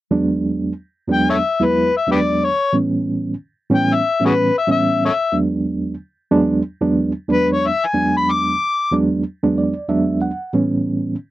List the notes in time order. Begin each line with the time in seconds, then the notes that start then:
0.11 E2 F#3 G#3 B3 D4
1.08 E2 F#3 G#3 B3 D4
1.13 G5
1.30 A4 C#5 E5
1.60 E2 F#3 G#3 B3 E4
1.65 B4
1.97 E5
2.07 E2 F#3 G#3 B3 D4
2.11 G4 B4 D5
2.44 C#5
2.73 A2 E3 G3 B3 C#4
3.70 A2 E3 G3 B3 C#4
3.75 G5
3.94 E5
4.20 A2 E3 G3 B3 C#4
4.25 F#4 G#4 B4
4.58 E5
4.67 A2 E3 G3 B3 C#4 E5
5.05 A4 C#5 E5
5.32 E2 F#3 G#3 B3 D4
6.31 E2 F#3 G#3 B3 D4
6.81 E2 F#3 G#3 B3 D4
7.28 E2 F#3 G#3 B3 D4
7.32 B4
7.52 C#5
7.67 E5
7.85 G#5
7.94 E2 F#3 G#3 B3 D4
8.17 B5
8.32 D6
8.92 E2 F#3 G#3 B3 D4
9.43 E2 F#3 G#3 B3 D4
9.58 D5
9.88 E2 F#3 G#3 B3 D4 E5
10.22 F#5
10.53 A2 E3 G3 B3 C#4